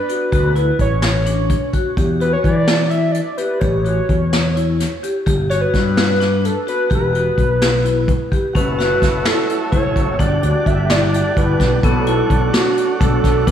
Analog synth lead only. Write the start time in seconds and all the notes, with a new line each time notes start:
Already playing: B4
0.33 B4
0.81 C#5
1.04 C#5
2.21 B4
2.33 C#5
2.44 D5
2.90 E5
3.12 D5
3.37 B4
3.60 C#5
5.50 C#5
5.61 B4
5.75 B4
6.45 A4
6.69 B4
6.95 B4
8.56 B4
9.26 A4
9.72 C#5
10.20 D5
10.67 E5
10.91 D5
11.38 B4
11.84 A4
12.54 F#4
13.00 A4
13.47 B4